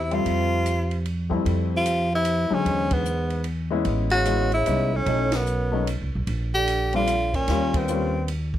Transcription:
0.00 0.23 E2 medium
0.00 0.15 E4 medium
0.05 0.14 C3 medium
0.11 1.07 C3 medium
0.11 0.63 G3 medium
0.11 0.63 A3 soft
0.11 0.63 C4 medium
0.11 1.07 F4 medium
0.11 0.64 E5 medium
0.11 ride soft
0.25 1.42 F2 medium
0.25 kick soft
0.25 ride medium
0.66 hi-hat pedal medium
0.66 ride medium
0.91 ride soft
1.06 ride soft
1.30 1.82 F2 medium
1.30 1.83 G3 medium
1.30 1.83 A3 medium
1.30 1.83 C4 medium
1.30 1.83 E4 medium
1.30 kick soft
1.45 2.48 F2 medium
1.45 kick soft
1.45 ride medium
1.74 2.11 C3 medium
1.74 2.12 F4 medium
1.86 hi-hat pedal medium
1.86 ride medium
2.13 2.54 C3 medium
2.13 2.55 E4 medium
2.25 hi-hat pedal soft
2.25 ride medium
2.50 2.92 G#2 medium
2.50 3.04 D3 medium
2.50 3.03 F#3 medium
2.50 3.03 G#3 medium
2.50 3.04 C#4 medium
2.50 2.94 C#4 medium
2.50 muted upright bass stroke soft
2.65 3.82 E2 medium
2.65 kick soft
2.65 ride medium
2.91 3.47 G#2 medium
2.91 3.47 B3 medium
2.91 kick medium
2.91 ride medium
3.05 hi-hat pedal medium
3.30 ride soft
3.44 ride medium
3.71 4.23 G#3 medium
3.71 4.24 B3 medium
3.71 4.24 C#4 medium
3.71 4.24 E4 medium
3.85 4.62 A1 medium
3.85 kick soft
3.85 ride medium
4.10 4.50 C#3 medium
4.10 4.49 F#4 medium
4.10 ride soft
4.25 4.50 G#3 medium
4.25 4.50 B3 medium
4.25 4.50 C#4 medium
4.25 4.50 E4 medium
4.25 hi-hat pedal medium
4.25 ride medium
4.52 4.96 C#3 medium
4.52 4.97 E4 medium
4.52 ride soft
4.66 5.05 C2 medium
4.66 4.90 G#3 medium
4.66 4.90 B3 medium
4.66 4.91 C#4 medium
4.66 4.91 D#4 medium
4.66 hi-hat pedal soft
4.66 ride medium
4.94 5.37 A2 medium
4.94 5.37 C#4 medium
5.06 5.97 B1 medium
5.06 5.30 F#3 medium
5.06 5.31 A3 medium
5.06 5.31 C#4 medium
5.06 5.31 D#4 medium
5.06 kick soft
5.06 ride medium
5.32 5.89 F#2 medium
5.32 snare medium
5.32 ride medium
5.36 5.89 B3 medium
5.46 hi-hat pedal soft
5.72 5.86 F#3 medium
5.72 5.86 A3 medium
5.72 5.86 C#4 medium
5.72 5.86 D#4 medium
5.87 hi-hat pedal soft
5.87 ride medium
6.01 6.14 C#2 medium
6.15 6.26 B1 medium
6.27 7.44 A#1 medium
6.27 kick soft
6.27 ride medium
6.54 6.92 D3 medium
6.54 6.91 G4 loud
6.68 hi-hat pedal soft
6.68 ride medium
6.93 7.36 D3 medium
6.93 7.07 G3 medium
6.93 7.07 C4 medium
6.93 7.07 D4 medium
6.93 7.08 F4 medium
6.93 7.36 F4 loud
6.93 ride soft
7.07 hi-hat pedal medium
7.07 ride medium
7.34 7.78 A#2 medium
7.34 7.78 C#4 medium
7.34 kick soft
7.34 ride soft
7.48 8.59 D#2 medium
7.48 7.87 G3 medium
7.48 7.88 A#3 medium
7.48 7.88 C#4 medium
7.48 7.88 F4 medium
7.48 kick soft
7.48 snare soft
7.48 ride medium
7.74 8.30 G2 medium
7.74 8.30 C4 medium
7.74 kick medium
7.74 ride medium
7.88 8.12 G3 medium
7.88 8.12 A#3 soft
7.88 8.12 C#4 medium
7.88 8.12 F4 medium
7.88 hi-hat pedal medium
8.28 ride medium
8.54 kick medium

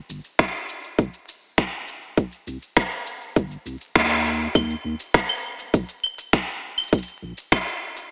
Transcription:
0.09 0.19 G1 medium
0.09 shaker medium
0.24 shaker soft
0.39 finger snap medium
0.39 kick medium
0.39 shaker soft
0.69 shaker medium
0.84 shaker soft
0.99 1.09 F1 medium
0.99 kick loud
0.99 shaker soft
1.14 shaker soft
1.29 shaker medium
1.58 finger snap medium
1.58 kick medium
1.58 shaker soft
1.88 shaker medium
2.03 shaker soft
2.17 kick medium
2.17 shaker soft
2.32 shaker soft
2.47 2.57 C2 medium
2.47 shaker medium
2.62 shaker soft
2.77 finger snap loud
2.77 kick medium
2.77 shaker soft
2.92 shaker soft
3.06 shaker medium
3.21 shaker soft
3.36 3.56 G1 medium
3.36 kick loud
3.36 shaker soft
3.51 shaker soft
3.66 3.76 C2 medium
3.66 shaker medium
3.81 shaker soft
3.96 4.47 D#2 medium
3.96 finger snap loud
3.96 kick medium
3.96 shaker soft
4.10 finger snap soft
4.10 shaker soft
4.14 shaker soft
4.18 shaker soft
4.22 shaker soft
4.26 shaker medium
4.29 shaker soft
4.33 shaker soft
4.37 shaker soft
4.41 shaker soft
4.55 4.75 D#2 loud
4.55 kick loud
4.55 open hi-hat medium
4.55 claves medium
4.55 shaker medium
4.70 shaker soft
4.84 4.94 D#2 loud
5.00 shaker medium
5.14 finger snap loud
5.14 kick loud
5.14 open hi-hat medium
5.14 shaker soft
5.29 claves medium
5.29 shaker soft
5.32 shaker soft
5.35 shaker soft
5.37 shaker soft
5.40 shaker soft
5.42 shaker soft
5.59 open hi-hat soft
5.59 shaker medium
5.74 5.84 A#1 medium
5.74 kick loud
5.74 open hi-hat medium
5.74 shaker medium
5.89 open hi-hat soft
5.89 shaker soft
6.04 claves medium
6.18 open hi-hat soft
6.18 shaker medium
6.33 finger snap loud
6.33 kick medium
6.33 open hi-hat medium
6.33 shaker medium
6.48 shaker soft
6.78 claves medium
6.78 shaker soft
6.83 shaker soft
6.88 shaker soft
6.93 kick loud
6.93 open hi-hat medium
6.93 shaker medium
6.98 shaker soft
7.03 shaker medium
7.08 shaker soft
7.22 7.32 A#1 loud
7.38 shaker medium
7.52 finger snap loud
7.52 kick loud
7.52 open hi-hat medium
7.52 claves medium
7.52 shaker medium
7.67 shaker soft
7.97 open hi-hat soft
7.97 shaker medium

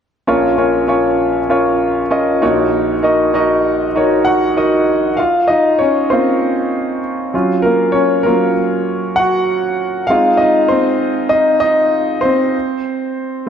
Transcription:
0.27 2.38 A#1 soft
0.27 2.38 A#2 soft
0.27 0.53 C#4 medium
0.27 0.53 F4 medium
0.27 0.53 A#4 medium
0.27 0.54 C#5 medium
0.58 0.83 C#4 medium
0.58 0.83 F4 medium
0.58 0.84 A#4 medium
0.58 0.84 C#5 medium
0.88 1.39 C#4 medium
0.88 1.40 F4 medium
0.88 1.40 A#4 medium
0.88 1.40 C#5 medium
1.50 2.01 C#4 medium
1.50 2.01 F4 medium
1.50 2.01 A#4 medium
1.50 2.02 C#5 medium
2.11 2.42 C#4 medium
2.11 2.42 F4 medium
2.11 2.41 A#4 medium
2.11 2.42 D#5 medium
2.42 4.84 A#1 medium
2.42 4.84 A#2 medium
2.42 2.93 D#4 medium
2.42 2.93 F#4 medium
2.42 2.93 A#4 medium
2.42 2.94 C#5 medium
3.03 3.29 D#4 medium
3.03 3.29 F#4 medium
3.03 3.29 A#4 medium
3.03 3.29 D#5 medium
3.34 3.85 D#4 medium
3.34 3.85 F#4 medium
3.34 3.86 A#4 medium
3.34 3.86 D#5 medium
3.96 4.47 D#4 medium
3.96 4.26 F#4 medium
3.96 4.47 A#4 medium
3.96 4.47 C#5 medium
4.25 4.55 F#4 medium
4.25 5.20 F#5 medium
4.57 5.08 D#4 medium
4.57 5.08 F#4 medium
4.57 5.08 A#4 medium
4.57 5.08 D#5 medium
5.17 5.47 F4 medium
5.17 5.49 F5 medium
5.48 5.78 D#4 medium
5.48 5.80 D#5 medium
5.79 6.09 C#4 medium
5.79 6.11 C#5 medium
6.10 6.99 A#3 soft
6.10 7.61 C4 medium
6.10 6.99 C#4 soft
6.10 7.00 F4 medium
6.10 7.68 C5 medium
7.34 8.21 F#3 soft
7.34 7.94 C#4 soft
7.34 8.22 F4 soft
7.62 7.93 A#3 medium
7.62 7.95 A#4 medium
7.92 8.24 C#4 medium
7.92 8.25 C#5 medium
8.23 8.53 F#3 soft
8.23 9.14 A#3 medium
8.23 8.53 C#4 soft
8.23 8.53 F4 soft
8.23 9.19 A#4 medium
9.16 10.06 F#4 medium
9.16 10.11 F#5 medium
10.07 10.50 G#3 soft
10.07 10.50 C4 soft
10.07 10.40 D#4 medium
10.07 10.38 F4 medium
10.07 10.40 F5 medium
10.37 10.48 D#4 medium
10.37 10.45 D#5 medium
10.68 11.29 C4 medium
10.68 11.33 C5 medium
11.29 11.61 D#4 medium
11.29 11.59 D#5 medium
11.60 12.25 D#5 medium
11.64 12.21 D#4 medium
12.21 13.49 C5 medium
12.25 13.45 C4 medium

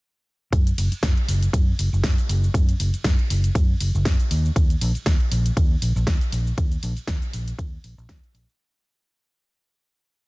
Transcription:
0.53 0.70 F#2 loud
0.53 kick loud
0.53 closed hi-hat medium
0.53 ride medium
0.53 shaker soft
0.67 closed hi-hat medium
0.67 shaker soft
0.78 0.87 F#1 loud
0.78 open hi-hat loud
0.78 ride medium
0.78 shaker medium
0.92 muted fingered electric bass stroke soft
0.92 closed hi-hat soft
0.92 shaker soft
1.03 1.12 F#2 medium
1.03 kick loud
1.03 snare loud
1.03 closed hi-hat medium
1.03 ride medium
1.03 shaker soft
1.17 closed hi-hat soft
1.28 1.46 F#1 medium
1.28 open hi-hat loud
1.28 ride medium
1.28 shaker medium
1.43 closed hi-hat medium
1.43 shaker soft
1.53 1.71 F#2 loud
1.53 kick loud
1.53 closed hi-hat medium
1.53 ride medium
1.53 shaker soft
1.79 1.88 F#1 medium
1.79 open hi-hat loud
1.79 ride medium
1.79 shaker medium
1.93 2.00 F#1 medium
1.93 shaker soft
2.04 2.13 F#2 loud
2.04 kick loud
2.04 snare loud
2.04 closed hi-hat medium
2.04 ride medium
2.04 shaker soft
2.18 closed hi-hat soft
2.18 shaker soft
2.29 2.47 F#1 loud
2.29 open hi-hat loud
2.29 ride medium
2.29 shaker medium
2.44 shaker soft
2.54 2.72 F#2 loud
2.54 kick loud
2.54 closed hi-hat medium
2.54 ride medium
2.54 shaker soft
2.69 closed hi-hat medium
2.69 shaker soft
2.80 2.89 F#1 loud
2.80 open hi-hat loud
2.80 ride medium
2.80 shaker medium
2.94 muted fingered electric bass stroke soft
2.94 closed hi-hat soft
2.94 shaker soft
3.04 3.14 F#2 medium
3.04 kick loud
3.04 snare loud
3.04 closed hi-hat medium
3.04 ride medium
3.04 shaker soft
3.19 closed hi-hat soft
3.30 3.48 F#1 medium
3.30 open hi-hat loud
3.30 ride medium
3.30 shaker medium
3.44 closed hi-hat medium
3.44 shaker soft
3.55 3.73 F#2 loud
3.55 kick loud
3.55 closed hi-hat medium
3.55 ride medium
3.55 shaker soft
3.81 3.90 F#1 medium
3.81 open hi-hat loud
3.81 ride medium
3.81 shaker medium
3.95 4.02 F#1 medium
3.95 shaker soft
4.05 4.15 F#2 loud
4.05 kick loud
4.05 snare loud
4.05 closed hi-hat medium
4.05 ride medium
4.05 shaker soft
4.20 closed hi-hat soft
4.20 shaker soft
4.31 4.48 D#2 loud
4.31 open hi-hat loud
4.31 ride medium
4.31 shaker medium
4.45 shaker soft
4.56 4.74 D#2 loud
4.56 kick loud
4.56 closed hi-hat medium
4.56 ride medium
4.56 shaker soft
4.70 closed hi-hat medium
4.70 shaker soft
4.81 4.91 A#1 loud
4.81 open hi-hat loud
4.81 ride medium
4.81 shaker medium
4.95 muted fingered electric bass stroke soft
4.95 closed hi-hat soft
4.95 shaker soft
5.06 5.16 D#2 medium
5.06 kick loud
5.06 snare loud
5.06 closed hi-hat medium
5.06 ride medium
5.06 shaker soft
5.20 closed hi-hat soft
5.32 5.49 A#1 medium
5.32 open hi-hat loud
5.32 ride medium
5.32 shaker medium
5.46 closed hi-hat medium
5.46 shaker soft
5.57 5.74 D#2 loud
5.57 kick loud
5.57 closed hi-hat medium
5.57 ride medium
5.57 shaker soft
5.82 5.91 A#1 medium
5.82 open hi-hat loud
5.82 ride medium
5.82 shaker medium
5.96 6.03 A#1 medium
5.96 shaker soft
6.07 6.17 D#2 loud
6.07 kick loud
6.07 snare loud
6.07 closed hi-hat medium
6.07 ride medium
6.07 shaker soft
6.21 closed hi-hat soft
6.21 shaker soft
6.32 6.50 A#1 loud
6.32 open hi-hat loud
6.32 ride medium
6.32 shaker medium
6.47 shaker soft
6.58 6.75 D#2 loud
6.58 kick loud
6.58 closed hi-hat medium
6.58 ride medium
6.58 shaker soft
6.72 closed hi-hat soft
6.72 shaker soft
6.83 6.92 A#1 loud
6.83 open hi-hat loud
6.83 ride medium
6.83 shaker medium
6.97 muted fingered electric bass stroke soft
6.97 closed hi-hat soft
6.97 shaker soft
7.07 7.17 D#2 medium
7.07 kick loud
7.07 snare loud
7.07 closed hi-hat medium
7.07 ride medium
7.07 shaker soft
7.22 closed hi-hat soft
7.22 shaker soft
7.33 7.51 A#1 medium
7.33 open hi-hat loud
7.33 ride medium
7.33 shaker medium
7.48 closed hi-hat medium
7.48 shaker soft
7.59 7.76 D#2 loud
7.59 kick loud
7.59 closed hi-hat medium
7.59 ride medium
7.59 shaker soft
7.84 7.93 A#1 medium
7.84 open hi-hat loud
7.84 ride medium
7.84 shaker medium
7.98 8.05 A#1 medium
7.98 shaker soft
8.09 8.18 D#2 medium
8.09 kick loud
8.09 snare loud
8.09 closed hi-hat medium
8.09 ride medium
8.09 shaker soft
8.23 closed hi-hat soft
8.23 shaker soft
8.34 8.44 A#1 loud
8.34 open hi-hat loud
8.34 ride medium
8.34 shaker medium
8.49 shaker soft

